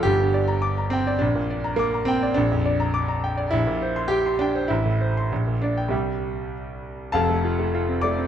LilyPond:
\new Staff \with { instrumentName = "Grand piano" } { \time 2/4 \key g \dorian \tempo 4 = 102 << { g'4. c'8 | d'4 bes8 c'8 | \key f \major d'2 | e'4 g'8 d'8 |
e'4. d'8 | g4 r4 | <a' f'' a''>4. <d'' d'''>8 | } \\ { <g,, g,>16 d16 d''16 bes''16 d'''16 bes''16 g''16 d''16 | bes,,16 bes,16 d''16 bes''16 d'''16 bes''16 g''16 d''16 | bes,,16 f,16 d''16 bes''16 d'''16 bes''16 g''16 d''16 | bes,,16 bes,16 c''16 c'''16 g''16 c'''16 g''16 c''16 |
a,,16 a,16 c''16 c'''16 bes,,16 bes,16 d''16 g''16 | <c, g' e'' g''>2 | <f,, f,>16 a16 f'16 a16 f'16 c'16 a16 c'16 | } >> }